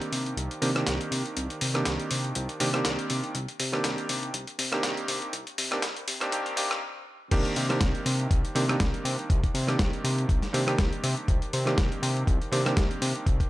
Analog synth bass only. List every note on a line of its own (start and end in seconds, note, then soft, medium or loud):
0.12 0.34 C3 medium
0.37 0.49 C2 loud
0.62 0.83 C3 medium
0.87 0.98 C2 medium
1.11 1.23 C3 medium
1.37 1.48 C2 medium
1.61 1.83 C3 medium
1.86 1.98 C2 medium
2.11 2.32 C3 medium
2.36 2.47 C2 loud
2.61 2.82 C3 medium
2.85 2.97 C2 medium
3.10 3.22 C3 medium
3.35 3.46 C2 loud
3.60 3.81 C3 medium
3.84 3.96 C2 medium
4.09 4.31 C3 medium
4.34 4.45 C2 loud
4.58 4.80 C3 medium
4.83 4.95 C2 medium
5.08 5.20 C3 medium
5.33 5.45 C2 loud
5.58 5.79 C3 medium
5.83 5.94 C2 medium
6.08 6.29 C3 medium
6.32 6.44 C2 loud
6.57 6.79 C3 medium
7.32 7.43 C2 loud
7.57 7.78 C3 medium
7.81 7.93 C2 medium
8.06 8.27 C3 medium
8.31 8.42 C2 loud
8.55 8.77 C3 medium
8.80 8.92 C2 medium
9.05 9.16 C3 medium
9.30 9.41 C2 loud
9.54 9.76 C3 medium
9.79 9.91 C2 medium
10.04 10.26 C3 medium
10.29 10.41 C2 loud
10.54 10.75 C3 medium
10.79 10.90 C2 medium
11.04 11.15 C3 loud
11.28 11.40 C2 loud
11.54 11.75 C3 medium
11.78 11.89 C2 medium
12.02 12.24 C3 medium
12.27 12.39 C2 loud
12.52 12.74 C3 medium
12.77 12.89 C2 medium
13.02 13.13 C3 medium
13.27 13.38 C2 loud